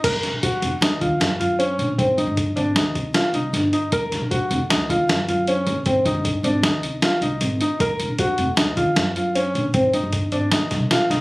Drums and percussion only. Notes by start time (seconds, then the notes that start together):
0.04 kick, closed hi-hat, crash
0.23 snare, closed hi-hat
0.43 kick, closed hi-hat
0.62 closed hi-hat
0.82 snare, closed hi-hat
1.01 kick, closed hi-hat
1.21 snare, closed hi-hat
1.41 closed hi-hat
1.60 closed hi-hat
1.79 closed hi-hat
1.99 kick, closed hi-hat
2.18 closed hi-hat
2.37 kick, closed hi-hat
2.57 closed hi-hat
2.76 snare, closed hi-hat
2.95 kick, closed hi-hat
3.14 snare, closed hi-hat
3.34 closed hi-hat
3.54 snare, closed hi-hat
3.73 closed hi-hat
3.92 kick, closed hi-hat
4.12 snare, closed hi-hat
4.31 kick, closed hi-hat
4.51 closed hi-hat
4.70 snare, closed hi-hat
4.90 kick, closed hi-hat
5.09 snare, closed hi-hat
5.29 closed hi-hat
5.47 closed hi-hat
5.67 closed hi-hat
5.86 kick, closed hi-hat
6.05 kick, closed hi-hat
6.25 kick, closed hi-hat
6.44 closed hi-hat
6.63 snare, closed hi-hat
6.83 closed hi-hat
7.02 snare, closed hi-hat
7.22 closed hi-hat
7.41 closed hi-hat
7.61 closed hi-hat
7.80 kick, closed hi-hat
8.00 closed hi-hat
8.19 kick, closed hi-hat
8.38 closed hi-hat
8.57 snare, closed hi-hat
8.77 kick, closed hi-hat
8.96 snare, closed hi-hat
9.16 closed hi-hat
9.35 closed hi-hat
9.55 closed hi-hat
9.74 kick, closed hi-hat
9.94 closed hi-hat
10.13 kick, closed hi-hat
10.32 closed hi-hat
10.52 snare, closed hi-hat
10.71 kick, snare, closed hi-hat
10.91 snare, closed hi-hat
11.11 snare, closed hi-hat